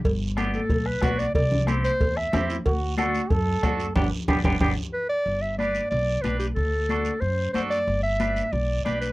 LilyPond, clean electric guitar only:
\new Staff \with { instrumentName = "Clean electric guitar" } { \time 4/4 \key g \major \tempo 4 = 184 r4 <b d' g'>8 r4. <b d' fis'>8 r8 | r4 <c' e' g'>8 r4. <c' e' g'>8 r8 | r4 <d' fis' a'>8 r4. <d' fis' a'>8 r8 | <b d' g'>8 r8 <b d' g'>8 <b d' g'>8 <b d' g'>8 r4. |
r4 <d' g' b'>8 r4. <d' g' b'>8 r8 | r4 <d' fis' a'>8 r4. <d' fis' a'>8 r8 | r4 <d' g' b'>8 r4. <d' g' b'>8 r8 | }